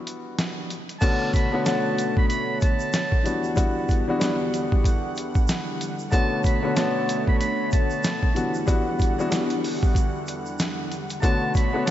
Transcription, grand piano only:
0.00 0.71 E3 medium
0.00 0.71 G3 medium
0.00 0.71 B3 medium
0.00 0.72 D4 medium
0.00 0.72 F#4 loud
1.01 1.48 D3 loud
1.01 1.48 A3 medium
1.01 1.48 B3 medium
1.01 1.49 C#4 medium
1.01 1.49 F#4 loud
1.52 1.64 D3 loud
1.52 1.64 A3 medium
1.52 1.65 B3 medium
1.52 1.66 C#4 medium
1.52 1.66 F#4 loud
1.65 3.15 D3 medium
1.65 3.15 A3 medium
1.65 3.15 B3 medium
1.65 3.16 C#4 medium
1.65 3.16 F#4 loud
3.24 3.53 E3 medium
3.24 3.54 G3 medium
3.24 3.55 B3 medium
3.24 3.55 D4 medium
3.24 3.56 F#4 medium
3.55 4.02 E3 medium
3.55 4.03 G3 medium
3.55 4.03 B3 medium
3.55 4.03 D4 medium
3.55 4.04 F#4 loud
4.07 4.16 E3 loud
4.07 4.17 G3 medium
4.07 4.18 B3 medium
4.07 4.18 D4 medium
4.07 4.19 F#4 loud
4.18 5.81 E3 medium
4.18 5.82 G3 medium
4.18 5.82 B3 medium
4.18 5.82 D4 medium
4.18 5.83 F#4 medium
6.12 6.58 D3 loud
6.12 6.59 A3 medium
6.12 6.59 B3 medium
6.12 6.59 C#4 medium
6.12 6.60 F#4 loud
6.63 6.74 D3 loud
6.63 6.75 A3 medium
6.63 6.76 B3 medium
6.63 6.76 C#4 medium
6.63 6.77 F#4 loud
6.76 8.25 D3 medium
6.76 8.26 A3 medium
6.76 8.26 B3 loud
6.76 8.26 C#4 medium
6.76 8.27 F#4 loud
8.34 8.64 E3 medium
8.34 8.65 G3 medium
8.34 8.65 B3 medium
8.34 8.66 D4 medium
8.34 8.66 F#4 medium
8.66 9.13 E3 medium
8.66 9.14 G3 medium
8.66 9.14 B3 medium
8.66 9.14 D4 medium
8.66 9.14 F#4 loud
9.18 9.27 E3 loud
9.18 9.28 G3 medium
9.18 9.29 B3 medium
9.18 9.29 D4 medium
9.18 9.30 F#4 loud
9.29 10.92 E3 medium
9.29 10.92 G3 medium
9.29 10.93 B3 medium
9.29 10.93 D4 medium
9.29 10.93 F#4 loud
11.22 11.69 D3 loud
11.22 11.69 A3 medium
11.22 11.70 B3 medium
11.22 11.70 C#4 medium
11.22 11.70 F#4 loud
11.73 11.85 D3 loud
11.73 11.86 A3 medium
11.73 11.86 B3 medium
11.73 11.87 C#4 medium
11.73 11.88 F#4 loud
11.87 11.91 D3 medium
11.87 11.91 A3 medium

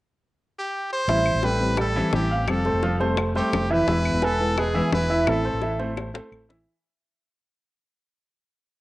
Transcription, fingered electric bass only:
1.08 1.33 A1 medium
1.34 2.01 A1 medium
2.12 2.46 A1 medium
2.47 2.72 F1 medium
2.73 3.40 F1 medium
3.53 3.86 F1 medium
3.87 4.12 E1 medium
4.13 4.80 E1 medium
4.92 5.25 E1 medium
5.27 5.52 A1 medium
5.53 6.19 A1 medium
6.31 6.64 A1 medium

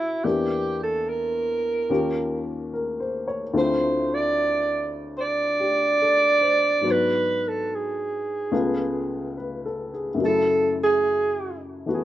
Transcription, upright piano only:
0.00 0.24 A2 soft
0.00 0.23 E3 soft
0.00 0.24 F#3 soft
0.00 0.24 A3 soft
0.00 0.25 B3 soft
0.00 0.25 C#4 soft
0.00 0.25 F#4 soft
0.00 0.25 G#4 soft
0.24 1.90 E2 soft
0.24 1.90 E3 soft
0.24 1.90 A#3 soft
0.24 1.90 D4 soft
0.24 1.89 G4 soft
1.90 3.55 D#2 soft
1.90 3.55 D#3 soft
1.90 3.55 C#4 soft
1.90 3.53 F4 soft
1.90 3.55 G4 soft
2.73 3.26 A#4 soft
3.00 3.43 C5 soft
3.28 3.70 C#5 soft
3.54 6.84 D2 soft
3.54 6.84 D3 soft
3.54 6.85 C4 soft
3.54 6.85 E4 soft
3.54 6.85 F4 soft
5.60 6.18 G4 soft
6.02 6.68 A4 soft
6.41 7.01 C5 soft
6.81 8.50 G#2 soft
6.81 8.51 F#3 soft
6.81 8.51 B3 soft
6.81 8.52 D4 soft
6.87 8.53 F#4 soft
8.52 10.20 C#2 soft
8.52 10.16 C#3 soft
8.52 10.20 A3 soft
8.52 10.20 B3 soft
8.52 10.20 F4 soft
9.37 9.91 B4 soft
9.66 10.09 A4 soft
9.94 10.37 G#4 soft
10.15 12.04 F#2 soft
10.15 12.04 C#3 soft
10.20 12.04 F#3 soft
10.20 11.85 A3 soft
10.26 12.04 E4 soft
11.86 12.04 E3 soft
11.86 12.04 A3 soft
11.86 12.04 B3 soft
11.86 12.04 F#4 soft

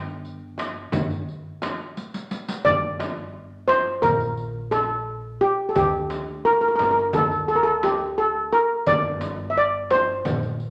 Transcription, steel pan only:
0.00 1.93 G5 loud
2.65 3.72 D5 loud
3.68 4.04 C5 medium
4.02 4.68 A#4 medium
4.71 5.43 A4 medium
5.41 5.70 G4 medium
5.69 5.76 A4 medium
5.76 6.47 G4 medium
6.45 6.52 A#4 medium
6.53 6.60 A#4 medium
6.61 6.67 A#4 medium
6.68 6.74 A#4 medium
6.76 6.82 A#4 medium
6.83 6.90 A#4 medium
6.91 6.98 A#4 medium
6.99 7.06 A#4 medium
7.14 7.47 A4 medium
7.48 7.56 A4 medium
7.56 7.63 A#4 medium
7.63 7.84 A4 medium
7.84 8.19 G4 medium
8.18 8.54 A4 medium
8.53 8.88 A#4 medium
8.87 9.51 D5 medium
9.50 9.57 E5 medium
9.58 9.93 D5 medium
9.91 10.70 C5 medium

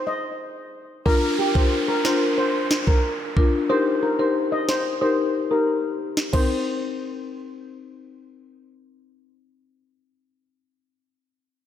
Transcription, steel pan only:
0.07 0.19 D#5 medium
1.06 1.18 A#4 loud
1.39 1.51 G4 medium
1.55 1.67 C5 medium
1.88 2.00 A#4 medium
2.05 2.17 C5 medium
2.38 2.50 C5 medium
2.87 2.99 A#4 medium
3.70 3.81 C5 medium
4.03 4.14 A#4 medium
4.19 4.31 C5 medium
4.52 4.64 D#5 medium
4.69 4.80 C5 medium
5.02 5.13 C5 medium
5.51 5.63 A#4 medium
6.33 8.27 C5 medium

